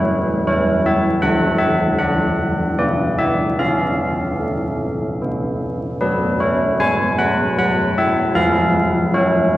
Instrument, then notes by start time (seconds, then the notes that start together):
church bells
Already playing: F#3 G#4 C#5
0.47 E3 C#5
0.86 E5
1.22 D3 A4 F#5
1.58 E5
1.98 D4 F#5
2.78 B3 G#4 D5
3.18 E5
3.58 C#4 G#4 F5
4.40 A3
5.22 B3
6.01 F#3 A4 B4
6.40 C#5
6.80 G#3 G#5
7.19 F#5
7.58 F#3 F#5
7.98 E5
8.35 F3 B4 F5
9.14 F#3 C#5